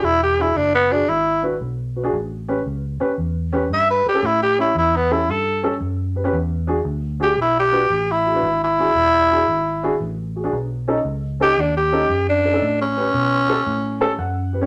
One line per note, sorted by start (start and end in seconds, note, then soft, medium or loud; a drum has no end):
0.03 0.54 E1 medium
0.03 0.21 E4 medium
0.23 0.43 G4 medium
0.39 0.48 D4 medium
0.39 0.58 E4 medium
0.39 0.48 F#4 medium
0.39 0.48 G#4 medium
0.56 1.07 F#1 medium
0.56 0.74 D4 medium
0.75 0.94 B3 medium
0.91 1.00 D4 medium
0.91 1.11 D4 medium
0.91 1.00 F#4 medium
0.91 1.00 G#4 medium
1.08 1.60 G#1 medium
1.08 1.44 E4 medium
1.43 1.52 D4 medium
1.43 1.53 F#4 medium
1.43 1.53 B4 medium
1.61 2.12 B1 medium
1.96 2.01 F#4 soft
1.96 2.01 B4 soft
2.04 2.13 D4 medium
2.04 2.13 F#4 medium
2.04 2.13 G#4 medium
2.13 2.64 A1 medium
2.48 2.57 C#4 medium
2.48 2.57 G4 medium
2.48 2.58 B4 medium
2.66 2.99 C#2 medium
3.00 3.10 C#4 medium
3.00 3.10 G4 medium
3.00 3.10 B4 medium
3.18 3.69 E2 medium
3.53 3.62 C#4 medium
3.53 3.62 G4 medium
3.53 3.63 B4 medium
3.70 4.04 G2 medium
3.70 3.89 E5 medium
3.90 4.07 B4 medium
4.05 4.10 G4 soft
4.05 4.27 G4 medium
4.05 4.11 A4 soft
4.05 muted fingered electric bass stroke soft
4.14 4.23 C#4 medium
4.14 4.24 G4 soft
4.14 4.24 A4 medium
4.23 4.74 A2 medium
4.23 4.42 E4 medium
4.43 4.59 G4 medium
4.58 4.67 C#4 medium
4.58 4.77 E4 medium
4.58 4.68 G4 medium
4.58 4.68 C#5 medium
4.75 5.27 E2 medium
4.75 4.98 E4 medium
4.96 5.14 B3 medium
5.11 5.20 C#4 medium
5.11 5.32 E4 medium
5.11 5.20 G4 medium
5.11 5.20 A4 medium
5.29 5.80 G2 medium
5.29 5.64 A4 medium
5.63 5.72 C#4 medium
5.63 5.73 G4 medium
5.63 5.73 A4 medium
5.80 6.32 F#2 loud
6.16 6.20 G4 soft
6.16 6.21 B4 medium
6.24 6.33 C#4 medium
6.24 6.33 G4 medium
6.24 6.34 B4 medium
6.33 6.84 E2 loud
6.67 6.77 D4 medium
6.67 6.77 F#4 medium
6.67 6.77 G#4 medium
6.85 7.36 D2 medium
7.20 7.29 D4 medium
7.20 7.29 F#4 medium
7.20 7.39 G4 medium
7.20 7.30 G#4 medium
7.37 7.89 B1 medium
7.41 7.57 E4 medium
7.59 8.13 G4 medium
7.72 7.81 D4 medium
7.72 7.82 F#4 medium
7.72 7.82 B4 medium
7.90 8.41 A1 loud
8.11 8.61 E4 medium
8.25 8.30 F#4 soft
8.25 8.31 G#4 soft
8.35 8.43 D4 medium
8.35 8.43 F#4 medium
8.35 8.44 B4 medium
8.43 8.94 G#1 loud
8.64 10.15 E4 loud
8.79 8.87 D4 medium
8.79 8.88 F#4 medium
8.79 8.88 G#4 medium
8.95 9.46 E1 medium
9.31 9.39 D4 medium
9.31 9.40 F#4 medium
9.31 9.40 G#4 medium
9.48 9.99 G#1 medium
9.83 9.92 D4 medium
9.83 9.92 F#4 medium
9.83 9.92 G#4 medium
10.00 10.51 A1 medium
10.36 10.40 F#4 soft
10.36 10.41 G#4 soft
10.44 10.53 D4 medium
10.44 10.53 F#4 medium
10.44 10.53 G#4 medium
10.53 11.04 B1 medium
10.88 10.96 C#4 medium
10.88 10.97 D#4 medium
10.88 10.97 A4 medium
11.05 11.56 C#2 medium
11.40 11.49 C#4 medium
11.40 11.49 D#4 medium
11.40 11.62 G4 loud
11.40 11.49 A4 medium
11.57 12.08 D#2 medium
11.57 11.76 D4 medium
11.77 12.27 G4 medium
11.92 12.01 C#4 medium
11.92 12.01 D#4 medium
11.92 12.01 A4 medium
12.09 12.60 F#2 medium
12.29 12.79 D4 medium
12.45 12.49 D#4 soft
12.45 12.49 A4 soft
12.53 12.62 C#4 medium
12.53 12.62 D#4 soft
12.53 12.62 A4 medium
12.62 13.13 A2 medium
12.81 14.33 C#4 loud
12.97 13.06 C#4 medium
12.97 13.06 G4 medium
12.97 13.06 B4 medium
13.14 13.65 B2 medium
13.49 13.58 C#4 medium
13.49 13.58 G4 medium
13.49 13.58 A4 medium
13.66 14.17 A2 medium
14.01 14.10 C#4 medium
14.01 14.10 G4 medium
14.01 14.10 A4 loud
14.01 14.17 A5 medium
14.18 14.66 F#2 loud
14.18 14.66 F#5 medium
14.53 14.58 G4 soft
14.53 14.58 B4 medium
14.61 14.66 C#4 medium
14.61 14.66 G4 medium
14.61 14.66 C#5 medium